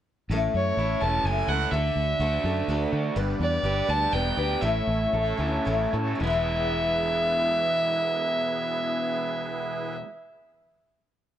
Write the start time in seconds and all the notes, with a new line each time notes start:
0.30 A1 A2 A3 C#4 E4 A4
0.54 F#2 C#5
0.77 A1 A3 C#4 E4 A4
1.00 E1 E4 A4 A5
1.04 C#4
1.24 F#1 A3 C#4 E4 A4 G#5
1.48 C#2 A4 F#5
1.52 C#4 E4
1.71 D2 D3 D4 F#4 A4 E5
1.96 D2
2.20 D2 D3 D4 F#4 A4
2.44 F#2 D4 F#4 A4
2.48 D4
2.68 D2 D3 A3 D4 F#4 A4
2.91 D3 F#4
3.15 G1 G2 G3 B3 D4 G4 B4 D5
3.40 E2 D5
3.63 G1 G3 B3 D4 G4 B4
3.87 D2 B3 D4 B4 A5
4.11 E1 G3 B3 D4 B4 G5
4.37 D2 B3 D4 G4 B4
4.60 A1 A2 A3 C#4 E4 A4 C#5 E5
4.87 A1
5.12 A1 A3 C#4 E4 A4
5.38 D2 C#4 E4 A4
5.65 A1 A3 C#4 E4 A4
5.93 A2 C#4 E4 A4
6.15 E2
6.19 E1 E2 B2 E3 B3 E4 G#4 B4 E5
6.24 G#3 B3
6.30 E4 G#4